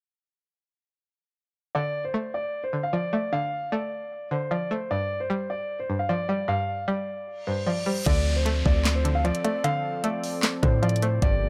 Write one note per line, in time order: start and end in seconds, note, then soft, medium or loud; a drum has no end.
1.75 2.72 D3 medium
1.75 2.03 D5 medium
2.05 2.32 C5 medium
2.14 3.12 A3 medium
2.34 2.62 D5 medium
2.64 2.82 C5 medium
2.73 3.31 D3 medium
2.83 2.93 F5 medium
2.93 3.92 F3 medium
2.93 3.11 D5 medium
3.13 3.71 A3 medium
3.13 3.31 D5 medium
3.33 4.30 D3 medium
3.33 3.70 F5 loud
3.72 4.70 A3 medium
3.72 4.28 D5 medium
4.31 4.91 D3 medium
4.31 4.50 C5 medium
4.51 4.91 F3 medium
4.51 4.70 D5 medium
4.71 4.91 A3 medium
4.71 4.89 C5 medium
4.91 5.88 G2 loud
4.91 5.19 D5 medium
5.20 5.48 C5 medium
5.30 6.28 G3 medium
5.50 5.78 D5 medium
5.80 5.98 C5 medium
5.90 6.47 G2 medium
5.99 6.08 F5 medium
6.09 7.08 F3 medium
6.09 6.27 D5 medium
6.29 6.87 G3 medium
6.29 6.47 D5 medium
6.48 7.46 G2 loud
6.48 6.86 F5 loud
6.88 7.85 G3 medium
6.88 7.44 D5 medium
7.27 reverse cymbal medium
7.47 8.06 G2 medium
7.47 7.66 C5 medium
7.67 8.06 F3 medium
7.67 7.85 D5 medium
7.86 8.06 G3 medium
7.86 8.05 C5 medium
8.06 8.63 D2 loud
8.06 9.04 D3 medium
8.06 11.19 F3 medium
8.06 11.19 C4 medium
8.06 11.19 A4 medium
8.06 8.34 D5 loud
8.06 11.49 D5 medium
8.06 kick loud
8.06 closed hi-hat medium
8.06 crash loud
8.06 downlifter medium
8.36 8.64 C5 medium
8.46 9.43 A3 medium
8.46 closed hi-hat medium
8.66 9.32 D2 loud
8.66 8.94 D5 medium
8.66 kick loud
8.85 snare loud
8.85 clap medium
8.85 closed hi-hat medium
8.95 9.14 C5 medium
9.05 9.63 D3 medium
9.05 closed hi-hat medium
9.15 9.24 F5 medium
9.25 10.23 F3 medium
9.25 9.43 D5 medium
9.25 closed hi-hat soft
9.35 closed hi-hat medium
9.44 10.03 A3 medium
9.44 9.63 D5 medium
9.44 closed hi-hat medium
9.64 10.62 D3 loud
9.64 10.01 F5 loud
9.64 closed hi-hat medium
10.04 11.01 A3 medium
10.04 10.59 D5 medium
10.04 closed hi-hat medium
10.24 open hi-hat medium
10.43 snare loud
10.43 clap medium
10.43 closed hi-hat medium
10.63 11.20 A2 loud
10.63 11.22 D3 medium
10.63 10.81 C5 medium
10.63 kick loud
10.63 closed hi-hat medium
10.83 11.22 F3 medium
10.83 11.01 D5 medium
10.83 closed hi-hat soft
10.89 closed hi-hat medium
10.96 closed hi-hat medium
11.02 11.22 A3 medium
11.02 11.21 C5 medium
11.02 closed hi-hat medium
11.22 11.49 G1 loud
11.22 11.49 G2 loud
11.22 11.49 F3 medium
11.22 11.49 A#3 medium
11.22 11.49 G4 medium
11.22 11.49 D5 loud
11.22 kick loud
11.22 closed hi-hat medium